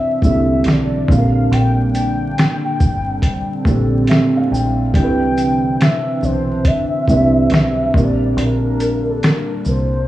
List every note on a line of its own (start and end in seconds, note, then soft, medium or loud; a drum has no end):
0.00 1.10 C3 medium
0.00 10.08 D3 medium
0.00 1.05 E3 medium
0.00 0.23 G3 medium
0.00 1.06 C4 medium
0.00 0.24 D4 medium
0.00 4.90 D4 medium
0.00 0.25 E4 medium
0.00 1.11 C5 medium
0.00 0.23 E5 loud
0.22 0.62 C2 medium
0.22 1.08 G3 medium
0.22 1.08 C4 medium
0.22 1.09 D4 medium
0.22 1.09 E4 medium
0.22 0.68 E5 loud
0.22 kick medium
0.22 shaker soft
0.26 1.10 A4 medium
0.64 1.05 B1 medium
0.64 1.10 D5 loud
0.64 snare loud
0.64 closed hi-hat medium
1.08 1.48 A#1 loud
1.08 2.60 A#2 medium
1.08 2.60 G3 medium
1.08 4.91 G3 medium
1.08 2.79 A#3 medium
1.08 2.61 C4 medium
1.08 2.61 D4 medium
1.08 1.18 A4 medium
1.08 1.55 F5 loud
1.08 kick loud
1.08 shaker soft
1.18 2.65 A#4 medium
1.51 2.33 A#1 loud
1.51 1.94 G5 loud
1.51 closed hi-hat medium
1.95 4.47 G5 loud
1.95 closed hi-hat soft
1.95 shaker soft
2.38 snare loud
2.38 closed hi-hat medium
2.80 3.20 G1 medium
2.80 4.91 C4 medium
2.80 kick loud
2.80 shaker soft
3.22 kick medium
3.22 closed hi-hat medium
3.65 4.05 A#1 medium
3.65 4.81 A#2 medium
3.65 4.81 G3 medium
3.65 4.81 C4 medium
3.65 4.82 D4 medium
3.65 4.82 A4 loud
3.65 4.06 D5 medium
3.65 kick medium
3.65 shaker soft
4.07 4.35 E5 medium
4.07 snare loud
4.07 closed hi-hat medium
4.37 4.51 F5 medium
4.51 4.94 A#1 loud
4.51 4.91 G5 medium
4.51 shaker soft
4.93 5.76 C2 loud
4.93 6.45 C3 medium
4.93 7.91 E3 medium
4.93 6.46 G3 medium
4.93 7.90 C4 medium
4.93 7.91 D4 medium
4.93 6.46 D4 medium
4.93 6.47 E4 medium
4.93 5.83 G5 loud
4.93 kick loud
4.93 closed hi-hat medium
4.97 5.04 A4 medium
5.03 6.50 B4 medium
5.38 closed hi-hat soft
5.38 shaker soft
5.81 6.26 E5 loud
5.81 snare loud
5.81 closed hi-hat medium
6.23 6.62 B1 loud
6.23 6.69 C5 loud
6.23 shaker soft
6.65 7.97 E5 loud
6.65 kick medium
6.65 closed hi-hat medium
7.08 7.48 C2 medium
7.08 7.93 G3 medium
7.08 7.94 C4 medium
7.08 7.95 D4 medium
7.08 7.95 E4 medium
7.08 7.96 B4 medium
7.08 kick medium
7.08 shaker soft
7.50 7.91 B1 medium
7.50 snare loud
7.50 closed hi-hat medium
7.93 8.34 A#1 medium
7.93 9.45 A#2 medium
7.93 9.46 G3 medium
7.93 10.08 G3 medium
7.93 10.06 A#3 medium
7.93 9.46 C4 medium
7.93 10.06 D4 medium
7.93 9.47 D4 medium
7.93 9.47 A#4 medium
7.93 8.40 D5 loud
7.93 kick loud
7.97 shaker soft
8.37 9.18 A#1 loud
8.37 9.12 A#4 loud
8.37 closed hi-hat medium
8.80 closed hi-hat soft
8.80 shaker soft
9.10 9.26 A4 medium
9.23 9.70 A#4 medium
9.23 snare loud
9.23 closed hi-hat medium
9.65 10.05 C2 medium
9.65 10.08 C5 medium
9.65 shaker soft